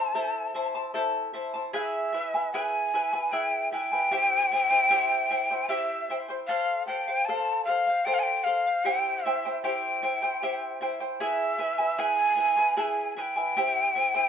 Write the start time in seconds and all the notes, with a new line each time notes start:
Already playing: E4 C5 A5
0.15 E4 A4 C5 E5 A5
0.54 E4 C5 E5 A5
0.75 E4 C5 A5
0.94 E4 A4 C5 E5 A5
1.33 E4 C5 E5 A5
1.54 E4 C5 A5
1.73 E4 G#4 B4 E5 F5 G#5
1.78 E5
2.13 E4 B4 E5 G#5
2.34 E4 B4 G#5
2.52 E4 G#4 B4 E5 G#5
2.94 E4 B4 E5 G#5
3.13 E4 B4 G#5
3.31 E4 G#4 B4 E5 G5
3.72 E4 B4 E5 G5 G#5
3.92 E4 B4 G#5
4.11 E4 G4 C5 E5 G5
4.52 E4 C5 E5 G5
4.70 E4 C5 G5
4.90 E4 G4 C5 E5 G5
5.30 E4 C5 E5 G5
5.50 E4 C5 G5
5.69 E4 G4 C5 E5 G5
6.10 E4 C5 E5 G5
6.29 E4 C5 G5
6.47 A4 C5 F5
6.87 A4 C5 F5 G5
7.08 C5 F5
7.25 A4 A5
7.29 C5 F5
7.65 A4 C5 F5
7.87 C5 F5
8.05 A4 C5 F5 G5
8.14 F5
8.19 G5 G#5
8.44 A4 C5 F5
8.67 C5 F5
8.84 E4 G4 C5 E5 G5
9.24 E4 C5 E5 G5
9.45 E4 C5 G5
9.63 E4 G4 C5 E5 G5
10.03 E4 C5 E5 G5
10.22 E4 C5 G5
10.42 E4 G4 C5 E5 G5
10.81 E4 C5 E5 G5
11.00 E4 C5 G5
11.20 E4 G#4 B4 E5 G#5
11.58 E4 B4 E5 G#5
11.78 E4 B4 G#5
11.98 E4 G#4 B4 E5 G#5
12.36 E4 B4 E5 G#5
12.57 E4 B4 G#5
12.76 E4 G#4 B4 E5 G#5 A5
12.82 G#5
13.16 E4 B4 E5 G#5
13.21 G5
13.36 E4 B4 G#5
13.57 E4 G4 C5 E5 G5
13.95 E4 C5 E5 G5
14.14 E4 C5 G5